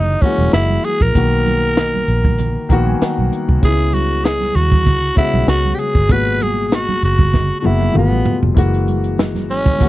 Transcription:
0.00 0.15 F#1 medium
0.00 0.21 E3 medium
0.00 0.23 G#3 medium
0.00 0.24 A#3 medium
0.00 0.23 D#4 medium
0.00 0.25 F#4 medium
0.21 1.05 E3 medium
0.21 1.05 G#3 medium
0.21 1.06 A#3 medium
0.21 0.53 C#4 medium
0.21 1.06 F#4 medium
0.21 kick medium
0.21 closed hi-hat medium
0.38 0.49 E1 medium
0.38 high conga medium
0.53 0.77 F#1 medium
0.53 0.86 E4 medium
0.53 snare medium
0.53 closed hi-hat medium
0.70 high conga medium
0.84 1.03 G#4 medium
0.84 closed hi-hat medium
0.84 muted conga soft
1.01 1.12 A#1 medium
1.01 2.87 A#4 medium
1.01 kick medium
1.14 2.04 B1 medium
1.14 2.25 D#3 medium
1.14 2.26 A#3 medium
1.14 2.26 B3 medium
1.14 2.27 F#4 medium
1.14 kick medium
1.14 closed hi-hat medium
1.14 muted conga soft
1.46 closed hi-hat medium
1.46 high conga medium
1.77 snare medium
1.77 closed hi-hat medium
1.94 high conga medium
2.08 2.56 A#1 medium
2.08 closed hi-hat medium
2.25 kick medium
2.25 high conga medium
2.25 low conga medium
2.39 closed hi-hat medium
2.39 low conga medium
2.69 2.93 A#1 medium
2.69 3.52 D#3 medium
2.69 3.53 A#3 medium
2.69 3.53 B3 medium
2.69 3.54 F#4 medium
2.69 2.86 A#5 medium
2.69 kick medium
2.69 closed hi-hat medium
2.69 muted conga soft
2.87 3.00 G#5 medium
2.87 high conga medium
3.01 3.59 F#5 medium
3.01 muted fingered electric bass stroke soft
3.01 snare medium
3.01 closed hi-hat medium
3.01 muted conga soft
3.18 3.29 B1 medium
3.18 high conga medium
3.33 closed hi-hat medium
3.48 3.59 C2 medium
3.48 kick medium
3.61 4.52 C#2 medium
3.61 4.72 C#3 medium
3.61 4.73 G#3 medium
3.61 4.73 B3 medium
3.61 4.74 E4 medium
3.61 3.95 G#4 medium
3.61 kick medium
3.61 closed hi-hat medium
3.93 4.26 F#4 medium
3.93 closed hi-hat medium
3.93 high conga medium
4.24 4.57 G#4 medium
4.24 snare medium
4.24 closed hi-hat medium
4.24 muted conga soft
4.40 snare soft
4.40 high conga medium
4.56 4.87 D#2 medium
4.56 5.17 F#4 medium
4.56 closed hi-hat medium
4.71 kick medium
4.71 high conga medium
4.71 low conga medium
4.86 5.10 C#2 medium
4.86 kick medium
4.86 closed hi-hat medium
4.86 muted conga soft
4.86 low conga medium
5.15 5.99 C#3 medium
5.15 5.99 G#3 medium
5.15 6.00 B3 medium
5.15 5.46 E4 medium
5.15 6.01 F#4 medium
5.15 kick medium
5.15 closed hi-hat medium
5.15 muted conga soft
5.34 5.45 B1 medium
5.34 high conga medium
5.48 5.71 C#2 medium
5.48 5.76 F#4 medium
5.48 snare medium
5.48 closed hi-hat medium
5.65 high conga medium
5.74 5.81 G4 medium
5.79 6.13 G#4 medium
5.79 closed hi-hat medium
5.79 muted conga soft
5.95 6.10 G1 medium
5.95 kick medium
6.09 6.98 G#1 medium
6.09 7.20 A#2 medium
6.09 7.20 B2 medium
6.09 7.20 G#3 medium
6.09 7.21 F#4 medium
6.09 6.44 B4 loud
6.09 kick medium
6.09 closed hi-hat medium
6.09 muted conga soft
6.40 6.67 G#4 medium
6.40 closed hi-hat medium
6.40 high conga medium
6.67 6.76 G#4 medium
6.72 7.04 F#4 medium
6.72 snare medium
6.72 closed hi-hat medium
6.89 high conga medium
7.03 7.50 F#1 medium
7.03 7.55 F#4 medium
7.03 closed hi-hat medium
7.19 kick medium
7.19 high conga medium
7.19 low conga medium
7.33 kick medium
7.33 snare soft
7.33 muted conga soft
7.33 low conga medium
7.60 7.92 B2 medium
7.60 7.95 G#3 medium
7.60 7.68 F#4 medium
7.64 7.89 F#1 medium
7.64 7.95 A#3 medium
7.64 7.96 E4 medium
7.64 7.96 F#4 medium
7.64 high tom medium
7.81 high tom medium
7.81 high conga medium
7.94 8.12 G1 medium
7.94 8.49 B2 medium
7.94 8.50 G3 medium
7.94 8.50 A3 medium
7.94 8.51 F4 medium
7.94 mid tom medium
7.94 muted conga soft
7.98 8.41 B3 medium
8.12 8.23 A1 medium
8.12 high conga medium
8.26 floor tom loud
8.26 low conga medium
8.42 8.53 F1 medium
8.42 floor tom medium
8.54 9.50 F#1 medium
8.54 9.66 E3 medium
8.54 9.67 G#3 medium
8.54 9.67 A#3 medium
8.54 9.68 F#4 medium
8.54 kick medium
8.54 closed hi-hat medium
8.54 muted conga soft
8.74 closed hi-hat soft
8.87 closed hi-hat medium
8.87 high conga medium
9.04 closed hi-hat soft
9.18 snare medium
9.18 muted conga soft
9.18 high conga medium
9.35 snare soft
9.35 closed hi-hat soft
9.35 high conga medium
9.49 9.82 G#1 medium
9.49 9.89 C#4 medium
9.49 closed hi-hat medium
9.49 muted conga soft
9.65 kick medium
9.65 closed hi-hat medium
9.65 high conga medium
9.65 low conga medium
9.78 9.89 E3 medium
9.78 9.89 G#3 medium
9.78 9.89 A#3 medium
9.78 kick medium
9.78 closed hi-hat medium
9.78 muted conga soft
9.78 low conga medium
9.82 9.89 F#4 medium

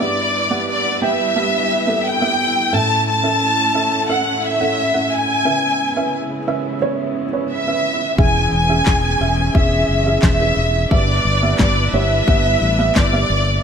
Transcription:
0.00 0.98 G2 soft
0.00 2.70 G3 medium
0.00 0.42 B3 medium
0.00 2.70 D4 medium
0.00 8.14 E4 medium
0.00 0.42 G4 medium
0.00 2.70 B4 medium
0.00 0.69 D5 medium
0.00 0.42 E5 medium
0.50 0.93 B3 medium
0.50 0.93 G4 soft
0.50 0.93 F#5 medium
0.70 1.00 D5 medium
1.01 1.30 B3 medium
1.01 1.30 G4 medium
1.01 2.05 E5 medium
1.01 1.30 G5 medium
1.36 1.78 B3 medium
1.36 1.79 G4 medium
1.36 1.79 E5 medium
1.87 2.15 B3 medium
1.87 2.16 G4 medium
1.87 2.16 A4 medium
2.06 2.73 G5 medium
2.21 2.64 B3 medium
2.21 2.64 G4 medium
2.21 2.64 E5 medium
2.72 3.71 A2 medium
2.72 5.43 A3 medium
2.72 3.15 C#4 medium
2.72 5.43 C#4 medium
2.72 3.15 A4 medium
2.72 3.15 E5 medium
2.72 3.07 A5 medium
3.09 4.06 A5 medium
3.23 3.66 C#4 medium
3.23 3.66 A4 soft
3.23 3.66 E5 medium
3.75 4.03 C#4 medium
3.75 4.03 A4 medium
3.75 4.03 E5 medium
4.09 4.52 C#4 medium
4.09 4.52 A4 medium
4.09 4.52 E5 medium
4.09 4.44 F#5 medium
4.45 5.12 E5 medium
4.60 4.89 C#4 medium
4.60 4.89 A4 medium
4.60 4.89 F#5 medium
4.94 5.37 C#4 medium
4.94 5.37 A4 medium
4.94 5.37 F#5 medium
5.14 6.15 G#5 medium
5.45 6.43 C#3 soft
5.45 8.16 C#3 medium
5.45 8.15 G#3 medium
5.45 10.87 B3 medium
5.45 5.88 C#4 medium
5.45 5.88 B4 medium
5.45 5.88 E5 medium
5.96 6.39 C#4 medium
5.96 6.39 B4 medium
5.96 6.39 E5 medium
6.47 6.76 C#4 medium
6.47 6.76 B4 medium
6.47 6.76 E5 medium
6.82 7.24 C#4 medium
6.82 7.24 B4 medium
6.82 7.25 C#5 medium
7.33 7.61 C#4 medium
7.33 7.61 B4 medium
7.33 7.62 C#5 medium
7.52 8.15 E5 medium
7.67 8.10 C#4 medium
7.67 8.10 B4 medium
7.67 8.10 E5 medium
8.18 8.46 E1 medium
8.18 9.17 E3 medium
8.18 10.89 E3 medium
8.18 8.61 C#4 medium
8.18 10.89 C#4 medium
8.18 8.61 G#4 medium
8.18 10.89 G#4 medium
8.18 8.61 E5 medium
8.18 8.53 G#5 medium
8.18 kick medium
8.52 8.80 E1 medium
8.52 9.52 G#5 medium
8.69 9.12 C#4 medium
8.69 9.12 G#4 soft
8.69 9.12 E5 medium
8.86 9.15 E1 medium
8.86 kick medium
8.86 snare medium
8.86 clap medium
9.20 9.49 E1 medium
9.20 9.49 C#4 medium
9.20 9.49 G#4 medium
9.20 9.49 E5 medium
9.54 9.83 E1 medium
9.54 9.97 C#4 medium
9.54 9.98 G#4 medium
9.54 9.98 E5 medium
9.54 10.23 E5 medium
9.54 kick medium
9.89 10.17 F#1 medium
10.06 10.34 C#4 medium
10.06 10.35 G#4 medium
10.06 10.35 E5 medium
10.22 10.51 E1 medium
10.22 10.88 E5 medium
10.22 kick loud
10.22 snare medium
10.22 clap medium
10.40 10.83 C#4 medium
10.40 10.83 G#4 soft
10.40 10.83 B4 medium
10.57 10.85 E1 medium
10.91 11.19 G1 medium
10.91 11.90 G2 soft
10.91 13.61 G3 medium
10.91 11.34 B3 medium
10.91 13.61 D4 medium
10.91 13.61 E4 medium
10.91 11.34 G4 medium
10.91 13.61 B4 medium
10.91 11.60 D5 medium
10.91 11.34 E5 medium
10.91 kick medium
11.25 11.53 G1 medium
11.42 11.85 B3 medium
11.42 11.85 G4 soft
11.42 11.85 E5 medium
11.59 11.88 G1 medium
11.59 11.92 D5 medium
11.59 kick medium
11.59 snare medium
11.59 clap medium
11.93 12.21 G1 medium
11.93 12.22 B3 medium
11.93 12.22 G4 medium
11.93 12.22 C#5 medium
11.93 12.97 E5 medium
12.28 12.56 G1 medium
12.28 12.70 B3 medium
12.28 12.70 G4 medium
12.28 12.71 E5 medium
12.28 kick loud
12.62 12.90 A1 medium
12.78 13.07 B3 medium
12.78 13.07 G4 medium
12.78 13.07 E5 medium
12.95 13.24 G1 medium
12.95 13.63 D5 medium
12.95 kick loud
12.95 snare loud
12.95 clap medium
13.13 13.56 B3 medium
13.13 13.56 G4 medium
13.13 13.56 E5 medium
13.30 13.58 G1 medium

